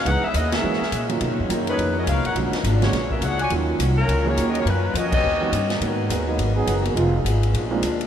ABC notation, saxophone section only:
X:1
M:4/4
L:1/8
Q:"Swing" 1/4=209
K:Ebm
V:1 name="Saxophone section"
[EAcg] [CEA_f] [C_FAe] [DABf]4 z | z3 [^F,^C^D=B]2 [C^F^A^d] [DA^c^e] [DAc^f] | z3 [A,=D^F^c]2 [^CFB_f] [DAc^f] [Fc=da] | z3 [G,DFB]2 [B,FGd]- (3[B,FGd] [DGBe] [B,FGd] |
[G,DFc]2 [DGBe] [D=Gce]4 z | [K:G#m] z8 | z8 |]